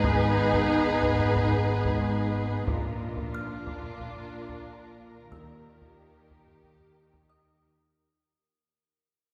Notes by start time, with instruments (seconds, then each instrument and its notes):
Already playing: double bass section G#1, cello section G#2, french horn section B3 D#4, viola section D#4, ambient pad D#4 B4 D#5, violin section G#4 B4, music box B5 A#6 B6
0.04 marimba G#2, taiko
0.38 marimba G#2
0.54 taiko
0.70 marimba G#2
1.03 marimba G#2, taiko
1.19 taiko low
1.36 marimba G#2, taiko
1.52 taiko low
1.85 taiko
2.02 marimba G#2
2.35 marimba G#2
2.67 double bass section A#1, cello section A#2, marimba A#2, french horn section A#3 D4, viola section D4, ambient pad F4 A#4 D5, violin section F4 A#4, taiko
3.01 marimba A#2
3.17 taiko
3.33 marimba A#2, music box F6
3.67 marimba A#2, taiko
3.84 taiko low
3.99 marimba A#2, taiko
4.16 taiko low
4.33 marimba A#2
4.49 taiko
4.65 marimba A#2
4.98 marimba A#2
5.31 double bass section D#2, cello section D#3, timpani D#3, ambient pad D#4 G4, viola section D#4, french horn section G4, violin section G4, music box E6, taiko
5.64 marimba D#3
5.81 taiko
5.98 marimba D#3
6.31 marimba D#3, taiko
6.47 taiko low
6.64 marimba D#3, taiko
6.80 taiko low
7.14 taiko
7.29 marimba D#3, music box D#5 D#6